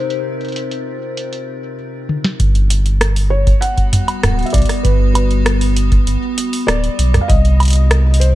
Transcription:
Already playing: ambient pad C3 C4 D#4 F4 A#4, felt piano C5
0.10 closed hi-hat
0.41 closed hi-hat
0.45 closed hi-hat
0.48 closed hi-hat
0.52 closed hi-hat
0.56 closed hi-hat
0.71 closed hi-hat
1.17 closed hi-hat
1.33 closed hi-hat
2.09 high tom
2.24 snare
2.40 sub bass G1, ambient pad G3 B3 F#4, kick, closed hi-hat
2.55 closed hi-hat
2.70 closed hi-hat
2.86 closed hi-hat
3.01 cross-stick, closed hi-hat
3.16 open hi-hat
3.30 felt piano C#5
3.47 kick, closed hi-hat
3.61 felt piano F#5, closed hi-hat
3.78 kick, closed hi-hat
3.93 closed hi-hat, mid tom
4.08 closed hi-hat, high woodblock
4.23 sub bass D1, cross-stick, closed hi-hat, mid tom
4.39 closed hi-hat
4.43 felt piano E5, closed hi-hat
4.46 closed hi-hat
4.50 sub bass B1, felt piano D5, kick, closed hi-hat
4.54 closed hi-hat
4.58 closed hi-hat
4.62 closed hi-hat
4.66 cross-stick, closed hi-hat, open hi-hat
4.83 sub bass G1, felt piano B4, kick, closed hi-hat
5.14 felt piano B4, closed hi-hat, high woodblock
5.31 closed hi-hat
5.46 cross-stick, closed hi-hat
5.61 open hi-hat
5.77 closed hi-hat
5.92 kick, closed hi-hat
6.07 sub bass G1, closed hi-hat
6.38 closed hi-hat
6.53 open hi-hat
6.67 sub bass D1, felt piano D5, cross-stick, closed hi-hat
6.84 closed hi-hat
6.99 sub bass B1, closed hi-hat
7.14 cross-stick, closed hi-hat, mid tom
7.21 felt piano F5
7.28 sub bass C2, ambient pad C3 C4 D#4 G4 A#4, felt piano D#5, kick, closed hi-hat
7.45 closed hi-hat
7.60 closed hi-hat, high woodblock
7.63 closed hi-hat
7.65 closed hi-hat
7.68 closed hi-hat
7.70 closed hi-hat
7.73 closed hi-hat
7.76 closed hi-hat
7.91 cross-stick, closed hi-hat
8.14 open hi-hat
8.20 felt piano C5, closed hi-hat

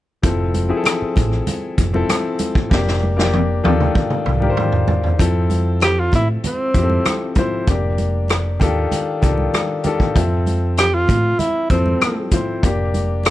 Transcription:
0.23 fingered electric bass F1, grand piano F3 C4 E4 A4, kick, closed hi-hat
0.54 closed hi-hat, high conga
0.68 grand piano F3 C4 E4 G#4
0.77 grand piano A4
0.84 cross-stick, closed hi-hat, muted conga
1.02 muted fingered electric bass stroke
1.16 fingered electric bass A1, kick, closed hi-hat, muted conga, low conga
1.31 cross-stick
1.47 closed hi-hat, muted conga, high conga, low conga
1.78 fingered electric bass F1, kick, closed hi-hat, muted conga
1.93 grand piano F3 C4 E4 A4, high conga
2.09 cross-stick, closed hi-hat, high conga
2.39 closed hi-hat, high conga
2.55 kick
2.70 fingered electric bass F1, grand piano A#3 D4 G4, kick, snare, muted conga
2.88 snare
3.03 high conga
3.17 grand piano A#3 D4 G4, snare
3.33 high tom
3.64 fingered electric bass D#2, grand piano D#3 D4 F4 G4 A4, high tom, low conga
3.80 mid tom
3.95 kick, high conga, low conga
4.10 mid tom
4.26 fingered electric bass C2, mid tom, muted conga
4.40 grand piano D#3 D4 F4 G4 A#4, high conga
4.50 grand piano C5
4.57 mid tom, high conga
4.72 floor tom
4.88 floor tom, high conga
5.04 floor tom
5.18 fingered electric bass F2, grand piano F3 C4 E4 A4, kick, closed hi-hat, muted conga
5.50 closed hi-hat, muted conga, high conga
5.80 tenor saxophone G4, cross-stick, closed hi-hat, muted conga
6.00 tenor saxophone F4
6.12 fingered electric bass A2, tenor saxophone E4, kick, closed hi-hat, muted conga, low conga
6.44 tenor saxophone C4, closed hi-hat, high conga, low conga
6.74 fingered electric bass F2, grand piano F3 C4 E4 G4, kick, closed hi-hat, muted conga
6.83 grand piano A4
6.90 high conga
7.05 cross-stick, closed hi-hat, muted conga, high conga
7.35 grand piano F3 C4 E4 C5, kick, closed hi-hat, muted conga, high conga, low conga
7.67 fingered electric bass F1, grand piano A#3 D4 G4, kick, closed hi-hat
7.98 closed hi-hat, muted conga, high conga
8.28 cross-stick, closed hi-hat, muted conga
8.60 fingered electric bass D#2, grand piano D#3 D4 F4 G4 A4, kick, closed hi-hat, muted conga, low conga
8.92 closed hi-hat, high conga, low conga
9.21 fingered electric bass C2, grand piano D#3 D4 F4 G4 A4, kick, closed hi-hat, muted conga
9.38 high conga
9.54 cross-stick, closed hi-hat, muted conga, high conga
9.84 grand piano D#3 D4 F4 G4 A4, closed hi-hat, high conga, low conga
10.00 kick
10.14 fingered electric bass F2, grand piano F3 C4 A4 E5, kick, closed hi-hat
10.46 closed hi-hat, high conga
10.77 tenor saxophone G4, cross-stick, closed hi-hat
10.94 tenor saxophone F4
11.08 fingered electric bass A2, kick, closed hi-hat, low conga
11.39 tenor saxophone E4, closed hi-hat, muted conga, high conga, low conga
11.69 fingered electric bass F2, grand piano F3 C4 E4 A4, tenor saxophone C4, kick, closed hi-hat
11.86 high conga
12.01 cross-stick, closed hi-hat, high conga
12.31 grand piano F3 C4 E4 C5, kick, closed hi-hat, muted conga, high conga, low conga
12.63 fingered electric bass F1, grand piano A#3 D4 G4, kick, closed hi-hat
12.94 closed hi-hat, muted conga, high conga
13.23 cross-stick, closed hi-hat, muted conga

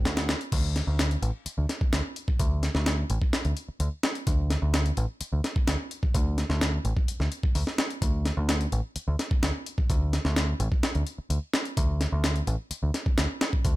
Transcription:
0.05 picked electric bass D2, snare, closed hi-hat
0.17 snare, closed hi-hat
0.29 snare, closed hi-hat
0.41 closed hi-hat
0.52 picked electric bass D2, kick, closed hi-hat, crash
0.76 snare, closed hi-hat
0.87 picked electric bass D2
0.99 snare, closed hi-hat
1.11 closed hi-hat
1.22 picked electric bass A1, closed hi-hat
1.46 muted picked electric bass stroke, closed hi-hat
1.58 picked electric bass D2
1.69 snare, closed hi-hat
1.81 muted picked electric bass stroke, kick
1.93 picked electric bass D2, snare, closed hi-hat
2.16 closed hi-hat
2.28 kick
2.39 picked electric bass D2, kick, closed hi-hat
2.63 snare, closed hi-hat
2.75 picked electric bass D2, snare
2.86 snare, closed hi-hat
3.10 picked electric bass A1, closed hi-hat
3.22 kick
3.33 snare, closed hi-hat
3.45 picked electric bass D2, closed hi-hat
3.57 closed hi-hat
3.68 muted picked electric bass stroke
3.80 picked electric bass D2, closed hi-hat
4.03 snare, closed hi-hat
4.15 closed hi-hat
4.27 picked electric bass D2, kick, closed hi-hat
4.50 snare, closed hi-hat
4.62 picked electric bass D2
4.74 snare, closed hi-hat
4.86 closed hi-hat
4.97 picked electric bass A1, closed hi-hat
5.21 muted picked electric bass stroke, closed hi-hat
5.32 picked electric bass D2
5.44 snare, closed hi-hat
5.56 muted picked electric bass stroke, kick
5.67 picked electric bass D2, snare, closed hi-hat
5.91 closed hi-hat
6.03 kick
6.14 picked electric bass D2, kick, closed hi-hat
6.38 snare, closed hi-hat
6.50 picked electric bass D2, snare
6.61 snare, closed hi-hat
6.85 picked electric bass A1, closed hi-hat
6.97 kick
7.08 closed hi-hat
7.20 picked electric bass D2, snare
7.32 closed hi-hat
7.43 muted picked electric bass stroke, kick
7.55 picked electric bass D2, open hi-hat
7.67 snare
7.78 snare, closed hi-hat
7.91 closed hi-hat
8.02 picked electric bass D2, kick, closed hi-hat
8.25 snare, closed hi-hat
8.37 picked electric bass D2
8.49 snare, closed hi-hat
8.61 closed hi-hat
8.72 picked electric bass A1, closed hi-hat
8.96 muted picked electric bass stroke, closed hi-hat
9.08 picked electric bass D2
9.19 snare, closed hi-hat
9.31 muted picked electric bass stroke, kick
9.43 picked electric bass D2, snare, closed hi-hat
9.66 closed hi-hat
9.78 kick
9.90 picked electric bass D2, kick, closed hi-hat
10.13 snare, closed hi-hat
10.25 picked electric bass D2, snare
10.36 snare, closed hi-hat
10.60 picked electric bass A1, closed hi-hat
10.72 kick
10.83 snare, closed hi-hat
10.95 picked electric bass D2, closed hi-hat
11.07 closed hi-hat
11.18 muted picked electric bass stroke
11.30 picked electric bass D2, closed hi-hat
11.54 snare, closed hi-hat
11.65 closed hi-hat
11.77 picked electric bass D2, kick, closed hi-hat
12.01 snare, closed hi-hat
12.12 picked electric bass D2
12.24 snare, closed hi-hat
12.36 closed hi-hat
12.47 picked electric bass A1, closed hi-hat
12.71 muted picked electric bass stroke, closed hi-hat
12.83 picked electric bass D2
12.94 snare, closed hi-hat
13.06 muted picked electric bass stroke, kick
13.18 picked electric bass D2, snare, closed hi-hat
13.41 snare, closed hi-hat
13.53 kick
13.65 picked electric bass D2, kick, closed hi-hat

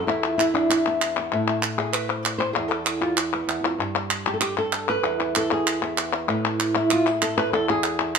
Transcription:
0.07 nylon-string guitar E2 E4, clap
0.23 nylon-string guitar F4
0.38 nylon-string guitar E4, clap
0.54 nylon-string guitar D4
0.69 nylon-string guitar E4, clap
0.87 nylon-string guitar B3
1.02 clap
1.19 nylon-string guitar B3
1.32 nylon-string guitar A2 E5
1.49 nylon-string guitar E5
1.63 clap
1.78 nylon-string guitar G#4
1.93 nylon-string guitar B4, clap
2.08 nylon-string guitar C5, clap
2.23 nylon-string guitar D5, clap
2.38 nylon-string guitar C5, clap
2.53 nylon-string guitar E2 G#4
2.68 nylon-string guitar A4
2.84 nylon-string guitar G#4, clap
3.01 nylon-string guitar F4, clap
3.17 nylon-string guitar G#4, clap
3.34 nylon-string guitar B3
3.47 nylon-string guitar E2, clap
3.63 nylon-string guitar F2, clap
3.78 nylon-string guitar G2
4.10 clap
4.27 nylon-string guitar G4
4.34 nylon-string guitar A4
4.41 nylon-string guitar G4, clap
4.57 nylon-string guitar A4, clap
4.73 clap
4.89 nylon-string guitar B4
5.03 nylon-string guitar E2 E4
5.20 nylon-string guitar E4
5.35 nylon-string guitar A4, clap
5.51 nylon-string guitar G#4, clap
5.67 clap
5.82 nylon-string guitar B3 E4, clap
5.98 clap
6.28 nylon-string guitar A2 B4, clap
6.60 clap
6.76 nylon-string guitar E4
6.91 nylon-string guitar F4, clap
7.07 nylon-string guitar G#4
7.22 nylon-string guitar A4, clap
7.38 nylon-string guitar B4, clap
7.52 nylon-string guitar E2 A4
7.70 nylon-string guitar G#4
7.84 clap
7.99 nylon-string guitar E4, clap
8.15 clap

